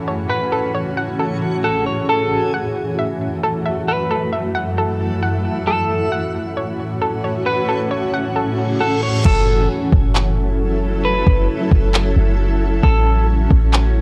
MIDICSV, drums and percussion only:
0, 0, Header, 1, 2, 480
1, 0, Start_track
1, 0, Key_signature, 3, "minor"
1, 0, Tempo, 447761
1, 319, Time_signature, 4, 2, 24, 8
1, 15022, End_track
2, 0, Start_track
2, 0, Title_t, "Drums"
2, 9919, Note_on_c, 9, 36, 109
2, 9919, Note_on_c, 9, 49, 92
2, 10026, Note_off_c, 9, 36, 0
2, 10026, Note_off_c, 9, 49, 0
2, 10638, Note_on_c, 9, 36, 100
2, 10746, Note_off_c, 9, 36, 0
2, 10883, Note_on_c, 9, 39, 121
2, 10991, Note_off_c, 9, 39, 0
2, 12079, Note_on_c, 9, 36, 87
2, 12186, Note_off_c, 9, 36, 0
2, 12559, Note_on_c, 9, 36, 99
2, 12666, Note_off_c, 9, 36, 0
2, 12803, Note_on_c, 9, 39, 124
2, 12910, Note_off_c, 9, 39, 0
2, 13759, Note_on_c, 9, 36, 108
2, 13866, Note_off_c, 9, 36, 0
2, 14478, Note_on_c, 9, 36, 97
2, 14585, Note_off_c, 9, 36, 0
2, 14723, Note_on_c, 9, 39, 123
2, 14830, Note_off_c, 9, 39, 0
2, 15022, End_track
0, 0, End_of_file